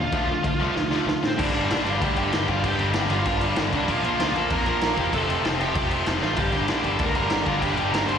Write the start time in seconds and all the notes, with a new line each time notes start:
Already playing: A#2 D3 F5
0.00 F3 F4
0.12 D2 D3 F3 A3 D4, kick, crash
0.28 D3 F3 A3
0.43 D2 D3 F3 A3, kick, crash
0.60 C2 D3 F3 A3 D4
0.75 D2 D3 F3 A3, snare
0.91 D3 F3 A3 D4, snare
1.07 D2 D3 F3 A3, snare
1.23 A2 D3 F3 A3 C4, snare
1.28 C5
1.38 G1 G2 D3 G3 A#3 D4 D5, kick, crash
1.53 G1 G2 D3 G3 A#3 D4, crash
1.69 A#1 G2 D3 G3 A#3 D4, snare, crash
1.84 G1 G2 D3 G3 A#3 D4, crash
1.89 F4 F5
2.01 D2 G2 D3 G3 A#3 D4 G4 G5, kick, crash
2.16 G1 G2 D3 G3 A#3 D4 G4 G5, crash
2.32 G1 G2 D3 G3 A#3 D4, snare, crash
2.48 G1 G2 D3 G3 A#3 D4 F4 F5, kick, crash
2.62 G1 G2 D3 G3 A#3 D4, kick, crash
2.67 G4 G5
2.78 G1 G2 D3 G3 A#3 D4, crash
2.93 G1 G2 D3 G3 A#3 D4, snare, crash
3.09 G1 G2 D3 G3 A#3 D4 F4 F5, crash
3.25 G1 G2 D3 G3 A#3 D4, kick, crash
3.41 G2 D3 G3 A#3 D4, crash
3.56 G1 G2 D3 G3 A#3 D4, snare, crash
3.73 C2 G2 D3 G3 A#3 D4, kick, crash
3.77 D5
3.88 A#1 A#2 F3 A#3 D4 F4 F5, kick, crash
4.03 A#1 A#2 F3 A#3 D4, crash
4.18 D2 A#2 F3 A#3 D4, snare, crash
4.35 A#1 A#2 F3 A#3 D4 A4 A5, crash
4.50 F2 A#2 F3 A#3 D4 A#4 A#5, kick, crash
4.66 A#1 A#2 F3 A#3 D4 A#4 A#5, crash
4.81 A#1 A#2 F3 A#3 D4, snare, crash
4.97 E1 A#2 F3 A#3 D4 G4 G5, kick, crash
5.12 F1 F2 C3 F3 A3 C4 A4 A5, kick, crash
5.28 F1 F2 C3 F3 A3 C4, crash
5.44 F1 F2 C3 F3 A3 C4, snare, crash
5.59 F1 F2 C3 F3 A3 C4 G4 G5, crash
5.75 F1 F2 C3 F3 A3 C4, kick, crash
5.89 F2 C3 F3 A3 C4, crash
6.06 F1 F2 C3 F3 A3 C4, snare, crash
6.21 A1 F2 C3 F3 A3 C4 F4 F5, snare
6.36 G1 G2 D3 G3 A#3 D4 G4 G5, kick, crash
6.52 G1 G2 D3 G3 A#3 D4, crash
6.67 A#1 G2 D3 G3 A#3 D4, snare, crash
6.83 G1 G2 D3 G3 A#3 D4 A5, crash
6.87 A4
6.99 D2 G2 D3 G3 A#3 D4, kick, crash
7.03 A#4 A#5
7.14 G1 G2 D3 G3 A#3 D4 A#4 A#5, crash
7.29 G1 G2 D3 G3 A#3 D4, snare, crash
7.45 G1 G2 D3 G3 A#3 D4 F4 F5, kick, crash
7.61 G1 G2 D3 G3 A#3 D4 G4 G5, kick, crash
7.76 G1 G2 D3 G3 A#3 D4, crash
7.92 G1 G2 D3 G3 A#3 D4 A#4 A#5, snare, crash
8.07 G1 G2 D3 G3 A#3 D4 C5 C6, crash